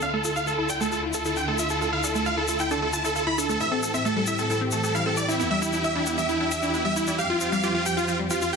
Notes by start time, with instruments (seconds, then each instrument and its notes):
0.01 string section D2 D3 E4 F4, synth pluck D4, grand piano F5, supersaw synth F5, shaker
0.13 synth pluck A3, grand piano A4, supersaw synth A4
0.25 synth pluck F4, grand piano A4, supersaw synth A4, shaker
0.36 synth pluck E4, supersaw synth F5, grand piano F5, shaker
0.47 synth pluck F4, grand piano A4, supersaw synth A4, shaker
0.58 synth pluck E4, grand piano A4, supersaw synth A4
0.69 synth pluck D4, grand piano G5, supersaw synth G5, shaker
0.81 synth pluck A3, grand piano A4, supersaw synth A4, shaker
0.92 synth pluck F4, grand piano A4, supersaw synth A4, shaker
1.03 synth pluck E4
1.14 synth pluck F4, grand piano A4, supersaw synth A4, shaker
1.25 synth pluck E4, grand piano A4, supersaw synth A4, shaker
1.36 synth pluck D4, supersaw synth G5, grand piano G5, shaker
1.48 synth pluck A3, supersaw synth A4, grand piano A4
1.58 synth pluck F4, grand piano E5, supersaw synth E5, shaker
1.69 synth pluck E4, grand piano A4, supersaw synth A4, shaker
1.81 synth pluck F4, supersaw synth A4, grand piano A4, shaker
1.93 synth pluck E4, grand piano F5, supersaw synth F5
2.04 synth pluck D4, grand piano A4, supersaw synth A4, shaker
2.15 synth pluck A3, grand piano A4, supersaw synth A4, shaker
2.26 synth pluck F4, grand piano F5, supersaw synth F5, shaker
2.37 synth pluck E4, grand piano A4, supersaw synth A4
2.48 synth pluck F4, grand piano A4, supersaw synth A4, shaker
2.59 synth pluck E4, grand piano G5, supersaw synth G5, shaker
2.70 synth pluck D4, grand piano A4, supersaw synth A4, shaker
2.82 synth pluck A3, grand piano A4, supersaw synth A4
2.93 synth pluck F4, grand piano A5, supersaw synth A5, shaker
3.04 synth pluck E4, grand piano A4, supersaw synth A4, shaker
3.15 synth pluck F4, grand piano A4, supersaw synth A4, shaker
3.27 synth pluck E4, supersaw synth B5, grand piano B5
3.38 synth pluck D4, grand piano A4, supersaw synth A4, shaker
3.49 synth pluck A3, grand piano A4, supersaw synth A4, shaker
3.60 string section A2 E3 C4 G4, synth pluck E4, grand piano E5, supersaw synth E5, shaker
3.72 synth pluck C4, supersaw synth A4, grand piano A4
3.83 synth pluck E4, grand piano A4, supersaw synth A4, shaker
3.94 synth pluck C4, grand piano E5, supersaw synth E5, shaker
4.05 synth pluck A3, supersaw synth A4, grand piano A4, shaker
4.16 synth pluck G3, grand piano A4, supersaw synth A4
4.27 synth pluck E4, grand piano E5, supersaw synth E5, shaker
4.38 synth pluck C4, grand piano A4, supersaw synth A4, shaker
4.50 synth pluck E4, grand piano A4, supersaw synth A4, shaker
4.61 synth pluck C4
4.71 synth pluck A3, grand piano A4, supersaw synth A4, shaker
4.83 synth pluck G3, grand piano A4, supersaw synth A4, shaker
4.95 synth pluck E4, grand piano F5, supersaw synth F5, shaker
5.06 synth pluck C4, supersaw synth A4, grand piano A4
5.17 synth pluck E4, supersaw synth D5, grand piano D5, shaker
5.28 synth pluck C4, grand piano E4, supersaw synth E4, shaker
5.39 string section E2 D4, synth pluck B3, supersaw synth E4, grand piano E4, shaker
5.51 synth pluck G3, supersaw synth E5, grand piano E5
5.62 supersaw synth E4, synth pluck E4, grand piano E4, shaker
5.73 synth pluck D4, grand piano E4, supersaw synth E4, shaker
5.84 synth pluck E4, supersaw synth E5, grand piano E5, shaker
5.95 synth pluck D4, supersaw synth E4, grand piano E4
6.06 synth pluck B3, supersaw synth E4, grand piano E4, shaker
6.18 synth pluck G3, supersaw synth E5, grand piano E5, shaker
6.29 supersaw synth E4, grand piano E4, synth pluck E4, shaker
6.40 synth pluck D4, supersaw synth E4, grand piano E4
6.51 synth pluck E4, supersaw synth E5, grand piano E5, shaker
6.62 synth pluck D4, grand piano E4, supersaw synth E4, shaker
6.74 synth pluck B3, supersaw synth E4, grand piano E4, shaker
6.85 synth pluck G3, supersaw synth E5, grand piano E5
6.96 supersaw synth E4, grand piano E4, synth pluck E4, shaker
7.07 synth pluck D4, grand piano E4, supersaw synth E4, shaker
7.18 string section F2 F3 C4, synth pluck G4, grand piano F5, supersaw synth F5, shaker
7.30 grand piano F4, synth pluck F4, supersaw synth F4
7.41 synth pluck C4, supersaw synth F4, grand piano F4, shaker
7.52 synth pluck G3, supersaw synth F5, grand piano F5, shaker
7.63 grand piano F4, supersaw synth F4, synth pluck G4, shaker
7.75 synth pluck F4, grand piano F4, supersaw synth F4
7.86 synth pluck G4, grand piano G5, supersaw synth G5, shaker
7.97 synth pluck F4, supersaw synth F4, grand piano F4, shaker
8.08 synth pluck C4, supersaw synth F4, grand piano F4, shaker
8.19 synth pluck G3
8.31 grand piano F4, supersaw synth F4, synth pluck G4, shaker
8.41 grand piano F4, supersaw synth F4, synth pluck F4, shaker
8.53 synth pluck G4, grand piano G5, supersaw synth G5